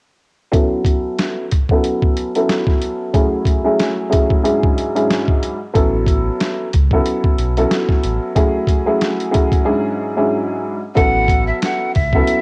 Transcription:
0.52 1.44 F#3 loud
0.52 1.44 B3 medium
0.52 1.44 C#4 medium
0.52 1.44 E4 medium
0.52 1.44 A4 loud
0.52 kick loud
0.52 closed hi-hat medium
0.85 kick medium
0.85 closed hi-hat medium
1.19 snare loud
1.19 closed hi-hat medium
1.52 kick medium
1.52 closed hi-hat medium
1.69 2.30 F#3 medium
1.69 2.30 B3 medium
1.69 2.30 C#4 medium
1.69 2.30 E4 medium
1.69 2.30 A4 medium
1.69 kick medium
1.84 closed hi-hat medium
2.02 kick loud
2.17 closed hi-hat medium
2.35 3.09 F#3 medium
2.35 3.09 B3 medium
2.35 3.09 C#4 medium
2.35 3.09 E4 medium
2.35 3.09 A4 loud
2.35 closed hi-hat medium
2.49 snare loud
2.49 closed hi-hat loud
2.67 kick medium
2.67 snare soft
2.82 closed hi-hat medium
3.13 3.61 F#3 medium
3.13 3.61 A3 medium
3.13 3.61 C#4 medium
3.13 3.61 E4 medium
3.13 3.61 G#4 loud
3.13 kick loud
3.13 closed hi-hat medium
3.46 kick medium
3.46 closed hi-hat medium
3.64 4.08 F#3 medium
3.64 4.08 A3 medium
3.64 4.08 C#4 medium
3.64 4.08 E4 medium
3.64 4.09 G#4 loud
3.80 snare loud
3.80 closed hi-hat medium
4.09 4.42 F#3 medium
4.09 4.43 A3 medium
4.09 4.42 C#4 medium
4.09 4.42 E4 medium
4.09 4.43 G#4 loud
4.09 kick medium
4.09 closed hi-hat medium
4.30 kick medium
4.43 4.91 G#2 medium
4.43 4.91 F#3 medium
4.43 4.91 C#4 medium
4.43 4.91 D4 medium
4.43 4.91 E4 medium
4.43 4.91 G#4 loud
4.43 closed hi-hat medium
4.63 kick loud
4.78 closed hi-hat medium
4.95 5.55 G#2 medium
4.95 5.55 F#3 medium
4.95 5.55 C#4 medium
4.95 5.55 D4 medium
4.95 5.55 E4 medium
4.95 5.55 G#4 medium
4.95 closed hi-hat soft
5.10 snare loud
5.10 closed hi-hat loud
5.28 kick medium
5.43 closed hi-hat medium
5.73 6.31 A1 loud
5.73 6.65 F#3 loud
5.73 6.65 B3 medium
5.73 6.66 C#4 medium
5.73 6.66 E4 medium
5.73 6.66 A4 loud
5.73 kick loud
5.73 closed hi-hat medium
6.06 kick medium
6.06 closed hi-hat medium
6.40 snare loud
6.40 closed hi-hat medium
6.73 7.01 C#2 medium
6.73 kick medium
6.73 closed hi-hat medium
6.91 7.51 F#3 medium
6.91 7.51 B3 medium
6.91 7.52 C#4 medium
6.91 7.52 E4 medium
6.91 7.52 A4 medium
6.91 kick medium
7.06 closed hi-hat medium
7.24 kick loud
7.38 7.66 B1 loud
7.38 closed hi-hat medium
7.57 8.31 F#3 loud
7.57 8.31 B3 medium
7.57 8.31 C#4 medium
7.57 8.31 E4 medium
7.57 8.31 A4 loud
7.57 closed hi-hat medium
7.71 snare loud
7.71 closed hi-hat loud
7.89 kick medium
7.89 snare soft
8.03 8.19 A1 medium
8.03 closed hi-hat medium
8.35 8.82 F#3 medium
8.35 8.83 A3 medium
8.35 8.83 C#4 medium
8.35 8.83 E4 medium
8.35 8.83 G#4 loud
8.35 kick loud
8.35 closed hi-hat medium
8.67 kick medium
8.67 closed hi-hat medium
8.86 9.30 F#3 medium
8.86 9.30 A3 medium
8.86 9.30 C#4 medium
8.86 9.30 E4 medium
8.86 9.30 G#4 loud
9.01 snare loud
9.01 closed hi-hat medium
9.20 closed hi-hat medium
9.31 9.63 F#3 loud
9.31 9.65 A3 medium
9.31 9.64 C#4 medium
9.31 9.64 E4 medium
9.31 9.64 G#4 loud
9.31 kick medium
9.31 closed hi-hat medium
9.52 kick medium
9.52 closed hi-hat medium
9.65 10.12 G#2 medium
9.65 10.13 F#3 medium
9.65 10.13 C#4 medium
9.65 10.13 D4 medium
9.65 10.13 E4 medium
9.65 10.13 G#4 loud
10.17 10.76 G#2 medium
10.17 10.77 F#3 medium
10.17 10.77 C#4 medium
10.17 10.77 D4 medium
10.17 10.77 E4 medium
10.17 10.77 G#4 medium
10.95 11.52 A1 loud
10.95 11.87 F#3 medium
10.95 11.87 B3 medium
10.95 11.87 C#4 medium
10.95 11.88 E4 medium
10.95 11.88 A4 loud
10.95 11.44 F#5 loud
10.95 kick loud
10.95 closed hi-hat medium
11.28 kick medium
11.28 closed hi-hat medium
11.47 11.60 E5 medium
11.62 11.92 F#5 medium
11.62 snare loud
11.62 closed hi-hat loud
11.94 12.23 C#2 loud
11.94 12.41 E5 medium
11.94 kick medium
11.94 open hi-hat medium
12.13 12.41 F#3 medium
12.13 12.41 B3 medium
12.13 12.41 C#4 medium
12.13 12.41 E4 medium
12.13 12.41 A4 loud
12.13 kick medium
12.27 closed hi-hat medium

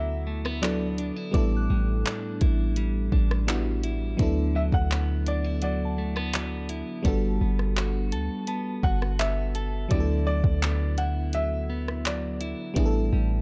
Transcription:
0.00 1.12 D2 loud
0.00 1.38 D3 medium
0.00 0.57 F#3 medium
0.00 0.61 F#3 medium
0.00 0.26 B3 medium
0.00 0.58 B3 medium
0.00 0.59 D4 medium
0.00 0.59 E4 medium
0.00 0.98 E4 medium
0.00 0.60 A4 medium
0.00 0.64 E5 loud
0.00 0.91 B5 medium
0.00 1.12 D6 medium
0.27 0.45 A3 medium
0.45 1.41 B3 medium
0.45 cross-stick medium
0.62 1.33 F#3 medium
0.62 1.41 F#3 medium
0.62 1.32 B3 soft
0.62 1.33 D4 soft
0.62 1.34 E4 soft
0.62 1.35 A4 medium
0.62 1.12 D5 medium
0.62 clap loud
0.62 closed hi-hat medium
0.98 1.16 D4 medium
0.98 closed hi-hat medium
1.16 1.34 E4 medium
1.31 1.68 A1 loud
1.31 4.20 A2 medium
1.31 3.43 G3 medium
1.31 3.43 B3 medium
1.31 3.44 D4 medium
1.31 2.41 E4 medium
1.31 3.45 E4 medium
1.31 3.41 D6 medium
1.31 kick loud
1.31 closed hi-hat medium
1.37 3.45 A4 medium
1.56 3.62 F#6 medium
1.70 2.04 A1 loud
1.70 2.76 G3 medium
2.05 3.12 D4 medium
2.05 clap loud
2.05 closed hi-hat medium
2.41 3.10 A1 loud
2.41 3.83 E4 medium
2.41 kick loud
2.41 closed hi-hat medium
2.76 3.47 G3 medium
2.76 closed hi-hat medium
3.12 4.15 A1 loud
3.12 4.91 D4 medium
3.12 kick medium
3.31 cross-stick medium
3.47 4.19 G3 medium
3.47 4.27 G3 medium
3.47 4.17 B3 medium
3.47 4.19 D4 medium
3.47 4.20 E4 medium
3.47 4.20 F#4 medium
3.47 clap loud
3.47 closed hi-hat medium
3.83 4.20 E4 medium
3.83 closed hi-hat medium
4.17 4.71 D2 loud
4.17 7.69 D3 medium
4.17 7.00 F#3 medium
4.17 7.01 B3 medium
4.17 7.01 D4 medium
4.17 5.26 E4 medium
4.17 7.02 E4 medium
4.17 kick loud
4.17 closed hi-hat medium
4.22 7.03 A4 medium
4.55 5.62 F#3 medium
4.55 4.61 E5 loud
4.72 6.83 D2 loud
4.72 5.23 F#5 loud
4.72 kick loud
4.91 5.98 B3 medium
4.91 clap loud
4.91 closed hi-hat medium
5.26 5.44 D4 medium
5.26 5.62 D5 medium
5.26 closed hi-hat medium
5.44 6.68 E4 medium
5.62 6.34 F#3 medium
5.62 6.66 D5 medium
5.62 7.37 F#5 medium
5.62 closed hi-hat medium
5.85 7.57 A5 medium
5.98 6.16 A3 medium
6.16 7.12 B3 medium
6.16 cross-stick medium
6.33 7.05 F#3 medium
6.33 clap loud
6.33 closed hi-hat medium
6.69 7.12 E4 medium
6.69 closed hi-hat medium
7.03 7.39 G1 loud
7.03 9.86 G3 medium
7.03 9.91 G3 medium
7.03 9.86 B3 medium
7.03 9.87 D4 medium
7.03 9.87 F#4 medium
7.03 8.12 A4 medium
7.03 kick loud
7.03 closed hi-hat medium
7.08 9.88 A4 medium
7.41 8.14 G1 loud
7.41 8.47 B3 medium
7.59 cross-stick medium
7.76 8.83 F#4 medium
7.76 clap loud
7.76 closed hi-hat medium
8.12 8.29 D2 loud
8.12 9.55 A4 medium
8.12 closed hi-hat medium
8.47 9.19 B3 medium
8.47 10.23 A5 medium
8.47 closed hi-hat medium
8.83 9.87 G1 loud
8.83 9.91 F#4 medium
8.83 9.21 F#5 loud
8.83 kick medium
9.02 cross-stick medium
9.19 10.62 B3 medium
9.19 9.93 E5 loud
9.19 clap loud
9.19 closed hi-hat medium
9.55 10.66 A4 medium
9.55 closed hi-hat medium
9.88 10.42 D2 loud
9.88 12.80 D3 medium
9.88 12.71 F#3 medium
9.88 12.72 B3 medium
9.88 12.73 D4 medium
9.88 10.98 E4 medium
9.88 12.73 E4 medium
9.88 10.25 D5 loud
9.88 kick loud
9.88 closed hi-hat medium
9.94 9.99 G4 medium
10.00 12.77 A4 medium
10.27 11.33 F#3 medium
10.27 11.00 D5 loud
10.44 12.54 D2 loud
10.44 kick loud
10.62 11.68 B3 medium
10.62 clap loud
10.62 closed hi-hat medium
10.98 12.41 E4 medium
10.98 11.35 F#5 medium
10.98 closed hi-hat medium
11.33 12.04 F#3 medium
11.33 12.08 E5 loud
11.33 closed hi-hat medium
11.70 12.84 B3 medium
11.88 cross-stick medium
12.05 12.84 F#3 medium
12.05 12.56 D5 medium
12.05 clap loud
12.05 closed hi-hat medium
12.41 12.77 E4 medium
12.41 closed hi-hat medium
12.74 13.11 A1 loud
12.74 13.42 A2 medium
12.74 13.42 G3 medium
12.74 13.42 B3 medium
12.74 13.42 D4 medium
12.74 13.42 E4 medium
12.74 kick loud
12.74 closed hi-hat medium
12.79 12.84 G#4 medium
12.86 13.42 A4 medium
13.13 13.42 A1 loud
13.13 13.42 G3 medium

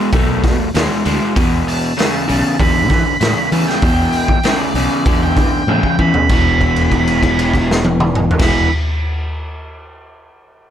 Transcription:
0.13 0.45 B1 medium
0.13 0.68 B2 medium
0.13 0.68 A3 medium
0.13 kick loud
0.13 open hi-hat medium
0.44 0.56 B2 medium
0.44 kick medium
0.44 snare soft
0.44 open hi-hat medium
0.74 0.86 D#2 medium
0.74 1.02 B2 medium
0.74 1.03 G#3 medium
0.74 snare loud
0.74 open hi-hat medium
1.05 1.17 D2 medium
1.05 1.33 B2 medium
1.05 1.33 G#3 medium
1.05 open hi-hat medium
1.35 1.91 E2 medium
1.35 1.60 E2 loud
1.35 1.91 B2 medium
1.35 kick loud
1.35 open hi-hat medium
1.68 2.57 A5 loud
1.68 open hi-hat soft
1.97 2.25 E2 medium
1.97 2.25 C#3 medium
1.97 snare loud
1.97 open hi-hat medium
2.28 2.41 B1 medium
2.28 2.56 E2 medium
2.28 2.56 C#3 medium
2.28 open hi-hat medium
2.60 3.15 E2 medium
2.60 2.90 E2 medium
2.60 3.15 D3 medium
2.60 3.50 B5 medium
2.60 kick loud
2.60 open hi-hat medium
2.90 3.02 E3 medium
2.90 kick medium
2.90 snare soft
2.90 open hi-hat medium
3.21 3.48 E2 medium
3.21 3.33 A2 medium
3.21 3.49 C#3 medium
3.21 snare loud
3.21 open hi-hat medium
3.52 3.80 E2 medium
3.52 3.80 C#3 medium
3.52 3.64 E3 medium
3.52 3.68 A5 medium
3.52 open hi-hat medium
3.68 4.57 G5 medium
3.68 snare soft
3.82 4.38 E2 medium
3.82 4.06 E2 loud
3.82 4.38 B2 medium
3.82 kick loud
3.82 open hi-hat medium
4.12 open hi-hat soft
4.28 kick medium
4.43 4.72 E2 medium
4.43 4.72 C#3 medium
4.43 snare loud
4.43 open hi-hat medium
4.59 5.19 D5 medium
4.74 4.86 B1 medium
4.74 5.03 E2 medium
4.74 5.03 C#3 medium
4.74 open hi-hat medium
5.06 5.38 E2 medium
5.06 5.62 E2 medium
5.06 5.62 D3 medium
5.06 kick loud
5.06 open hi-hat medium
5.23 5.97 G5 medium
5.37 5.49 E3 medium
5.37 kick medium
5.37 open hi-hat medium
5.67 5.96 E2 medium
5.67 5.79 A2 medium
5.67 5.96 C#3 medium
5.67 high tom medium
5.83 kick medium
5.99 6.27 E2 medium
5.99 6.27 C#3 medium
5.99 6.11 E3 medium
5.99 6.29 B5 medium
5.99 kick medium
6.14 floor tom medium
6.29 8.28 E1 medium
6.29 8.39 E2 medium
6.29 8.41 B2 loud
6.29 8.29 B5 loud
6.29 kick loud
6.29 crash medium
6.34 8.43 E3 medium
6.61 kick medium
6.61 crash soft
6.76 crash soft
6.92 kick medium
6.92 crash soft
7.07 crash soft
7.23 kick medium
7.23 crash soft
7.39 crash medium
7.54 kick medium
7.54 crash soft
7.71 snare medium
7.85 high tom medium
8.00 mid tom medium
8.15 mid tom loud
8.31 floor tom loud
8.39 8.65 E1 medium
8.39 8.67 E2 medium
8.39 8.68 B2 loud
8.39 8.68 B5 loud
8.39 kick loud
8.39 snare loud
8.39 crash loud
8.44 8.69 E3 loud

